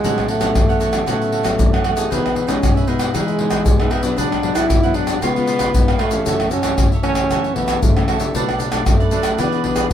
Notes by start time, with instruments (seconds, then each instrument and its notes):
Already playing: french horn G#3
0.04 nylon-string guitar A2 F#3 B3 C#4, cavaquinho F#4 A4 C#5 F#5, pandeiro, shaker, surdo
0.18 pandeiro, tamborim, shaker, surdo
0.28 french horn A3, cavaquinho F#4 A4 C#5 F#5, pandeiro
0.40 nylon-string guitar F#3 B3 C#4, cavaquinho F#4 A4 C#5 F#5, pandeiro, tamborim, shaker, surdo
0.55 nylon-string guitar E3, pandeiro, tamborim, shaker, surdo
0.69 nylon-string guitar F#3 B3 C#4, cavaquinho A4 C#5 F#5, pandeiro, shaker
0.80 cavaquinho F#4 A4 C#5 F#5, pandeiro, shaker
0.93 nylon-string guitar F#3 B3 C#4, pandeiro, tamborim, shaker, surdo
1.06 nylon-string guitar A2 F#3 B3 C#4, french horn A3, cavaquinho F#4 A4 C#5 F#5, pandeiro, tamborim, shaker, surdo
1.22 pandeiro, shaker
1.32 cavaquinho F#4 A4 C#5 F#5, pandeiro
1.43 nylon-string guitar F#3 B3 C#4, cavaquinho F#4 A4 C#5 F#5, pandeiro, tamborim, shaker, surdo
1.59 nylon-string guitar E3, pandeiro, shaker, surdo
1.73 nylon-string guitar F#3 B3 C#4, cavaquinho A4 C#5 F#5, pandeiro, tamborim, shaker
1.84 french horn A3, cavaquinho F#4 A4 C#5 F#5, pandeiro, tamborim
1.96 nylon-string guitar B3 D#4 G#4, cavaquinho A4 C#5 F#5, pandeiro, shaker
2.10 nylon-string guitar E3, french horn B3, cavaquinho D#4 G#4 B4 E5, pandeiro, shaker, surdo
2.26 pandeiro, tamborim, shaker, surdo
2.35 cavaquinho D#4 G#4 B4 E5, pandeiro
2.47 nylon-string guitar G#3 B3 D#4, french horn C#4, cavaquinho D#4 G#4 B4 E5, pandeiro, tamborim, shaker, surdo
2.63 nylon-string guitar B2, pandeiro, tamborim, shaker, surdo
2.76 cavaquinho G#4 B4 E5, pandeiro, shaker
2.87 nylon-string guitar G#3 B3 D#4, french horn B3, cavaquinho D#4 G#4 B4 E5, pandeiro
2.99 pandeiro, tamborim, shaker, surdo
3.14 nylon-string guitar E3, french horn G#3, cavaquinho D#4 G#4 B4 E5, pandeiro, tamborim, shaker, surdo
3.28 pandeiro, shaker
3.39 nylon-string guitar G#3 B3 D#4, cavaquinho D#4 G#4 B4 E5, pandeiro
3.50 cavaquinho D#4 G#4 B4 E5, pandeiro, tamborim, shaker, surdo
3.66 pandeiro, shaker, surdo
3.80 nylon-string guitar G#3 B3 D#4, cavaquinho G#4 B4 E5, pandeiro, tamborim, shaker
3.90 french horn B3, cavaquinho D#4 G#4 B4 E5, pandeiro, tamborim
4.02 nylon-string guitar F#3 B3 D4, cavaquinho G#4 B4 E5, pandeiro, shaker
4.16 nylon-string guitar G#2, cavaquinho D4 G#4 B4 F#5, french horn D4, pandeiro, shaker, surdo
4.32 pandeiro, tamborim, shaker, surdo
4.42 nylon-string guitar F#3 B3 D4, cavaquinho D4 G#4 B4 F#5, pandeiro
4.55 cavaquinho D4 G#4 B4 F#5, french horn E4, pandeiro, tamborim, shaker, surdo
4.70 nylon-string guitar G#2, pandeiro, tamborim, shaker, surdo
4.83 nylon-string guitar F#3 B3 D4, cavaquinho G#4 B4 F#5, pandeiro, shaker
4.94 cavaquinho D4 G#4 B4 F#5, french horn D4, pandeiro
5.07 pandeiro, tamborim, shaker, surdo
5.22 nylon-string guitar C#3 G#3 B3 F4, french horn B3, cavaquinho F4 B4 C#5 F5, pandeiro, tamborim, shaker, surdo
5.36 nylon-string guitar G#3 B3 F4, pandeiro, shaker
5.47 cavaquinho F4 B4 C#5 F5, pandeiro, shaker
5.59 cavaquinho F4 B4 C#5 F5, pandeiro, tamborim, shaker, surdo
5.74 nylon-string guitar G#2 G#3 B3 F4, pandeiro, shaker, surdo
5.88 cavaquinho B4 C#5 F5, pandeiro, tamborim, shaker
5.98 french horn A3, cavaquinho F4 B4 C#5 F5, pandeiro, tamborim
6.11 nylon-string guitar E3 A3 C#4, cavaquinho B4 C#5 F5, pandeiro, shaker
6.26 nylon-string guitar F#2, cavaquinho F#4 A4 C#5 E5, pandeiro, shaker, surdo
6.40 pandeiro, tamborim, shaker, surdo
6.51 french horn C#4, cavaquinho F#4 A4 C#5 E5, pandeiro, shaker
6.63 nylon-string guitar E3 A3 C#4, cavaquinho F#4 A4 C#5 E5, pandeiro, tamborim, shaker, surdo
6.78 nylon-string guitar C#3, pandeiro, tamborim, shaker, surdo
6.92 cavaquinho A4 C#5 E5, pandeiro, shaker
7.03 nylon-string guitar E3 A3 C#4, french horn C#4, cavaquinho F#4 A4 C#5 E5, pandeiro
7.15 pandeiro, tamborim, shaker, surdo
7.31 nylon-string guitar F#2, cavaquinho F#4 A4 C#5 E5, pandeiro, tamborim, shaker, surdo
7.44 pandeiro, shaker
7.54 nylon-string guitar E3 A3 C#4, french horn B3, cavaquinho F#4 A4 C#5 E5, pandeiro, surdo
7.68 cavaquinho F#4 A4 C#5 E5, pandeiro, tamborim, shaker, surdo
7.82 nylon-string guitar C#3, french horn A3, pandeiro, shaker, surdo
7.97 nylon-string guitar E3 A3 C#4, cavaquinho A4 C#5 E5, pandeiro, tamborim, shaker
8.07 french horn A3, cavaquinho F#4 A4 C#5 E5, pandeiro, tamborim
8.19 nylon-string guitar F#3 A3 D4, cavaquinho A4 C#5 E5, pandeiro, shaker
8.35 nylon-string guitar B2, french horn B3, cavaquinho D4 A4 B4 D5, pandeiro, shaker, surdo
8.49 pandeiro, tamborim, shaker, surdo
8.60 cavaquinho D4 A4 B4 D5, pandeiro, shaker
8.72 nylon-string guitar F#3 A3 D4, cavaquinho D4 A4 B4 D5, pandeiro, tamborim, shaker, surdo
8.86 nylon-string guitar F#2, french horn A3, pandeiro, tamborim, shaker, surdo
9.00 cavaquinho A4 B4 D5, pandeiro, shaker
9.11 nylon-string guitar F#3 A3 D4, cavaquinho D4 A4 B4 D5, pandeiro, shaker
9.23 pandeiro, tamborim, shaker, surdo
9.38 nylon-string guitar E3 B3 D4 G#4, french horn B3, cavaquinho E4 G#4 B4 D5, pandeiro, tamborim, shaker, surdo
9.52 pandeiro, shaker
9.64 nylon-string guitar B3 D4 G#4, cavaquinho E4 G#4 B4 D5, pandeiro, surdo
9.75 cavaquinho E4 G#4 B4 D5, pandeiro, tamborim, shaker, surdo